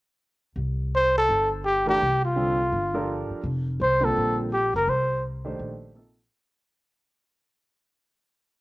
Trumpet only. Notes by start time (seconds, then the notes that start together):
0.95 C5
1.18 A4
1.65 G4
1.89 G4
2.25 F4
3.82 C5
4.04 A4
4.53 G4
4.76 A#4
4.89 C5